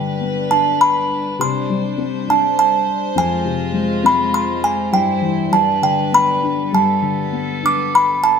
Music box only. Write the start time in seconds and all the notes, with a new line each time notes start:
Already playing: G5
0.51 A5
0.81 B5
1.41 C6
2.30 A5
2.59 A5
3.18 G#5
4.06 B5
4.34 C6
4.64 G#5
4.94 G5
5.53 A5
5.83 G5
6.14 B5
6.75 A5
7.66 D6
7.95 B5
8.24 A5